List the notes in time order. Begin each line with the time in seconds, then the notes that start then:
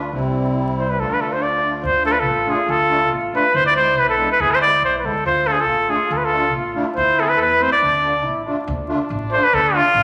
Already playing: D2 F4
0.12 C2 G3 C4 E4
0.78 C5
0.90 B4
0.99 D2 A3 D4 F4 A4
1.10 B4
1.21 A4
1.32 C5
1.42 D5
1.83 D2 F4 C5
2.04 A3 D4 F4 A4
2.12 B4
2.20 A4
2.27 A1
2.47 A3 D4 F4 G#4
2.68 D2 A4
2.90 A3 D4 E4
3.11 A1
3.33 A3 D4 F4 B4
3.54 D2 E4 C5
3.66 D5
3.75 G#3 B3 E4 C5
3.97 B1 B4
4.09 A4
4.17 G#3 B3 D4
4.32 B4
4.39 D2 E4 G#4
4.51 C5
4.59 G#3 B3 E4 D5
4.82 B1 C5
4.99 B4
5.03 D2 G#3 B3 E4 A4
5.25 D2 F4 C5
5.46 A3 D4 F4 A4
5.52 G#4
5.60 A4
5.68 A1 F4
5.88 A3 D4 F4 G#4
6.10 D2 A4
6.17 B4
6.24 A4
6.32 A3 D4 F4
6.54 A1
6.75 A3 D4 E4
6.96 D2 E4 C5
7.17 A3 C4 E4 A4
7.22 G#4 A4
7.29 B4
7.36 E2 A4
7.42 B4
7.60 A3 C4 E4 C5
7.72 D5
7.81 D2 D4
8.03 A3 D4 F4
8.25 A1 E4
8.46 A3 D4 F4
8.67 D2 D4
8.88 A3 D4 F4
9.10 A1
9.30 A3 D4 F4 C5
9.44 B4
9.53 D2 A4
9.73 A3 D4 F4
9.94 A1